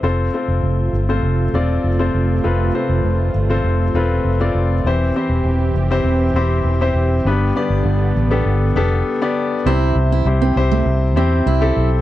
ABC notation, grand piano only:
X:1
M:4/4
L:1/16
Q:1/4=100
K:C
V:1 name="Grand piano"
[CFAc] z [CFAc]4 z [CFAc]2 z [CFAd]2 z [CFAc]2 z | [CFAB] z [CFAc]4 z [CFAc]2 z [CFAB]2 z [CFAd]2 z | [CEGc] z [CEGc]4 z [CEGc]2 z [CEGc]2 z [CEGc]2 z | [B,DGB] z [B,DGd]4 z [B,DGA]2 z [B,DGA]2 z [B,DGd]2 z |
[CEGc]3 z [CEGc] z [CEGc]3 z [CEGc]2 z [CEGA]2 z |]
V:2 name="Grand piano" clef=bass
z16 | z16 | E,6 z8 z2 | G,,6 z8 z2 |
C,6 z8 z2 |]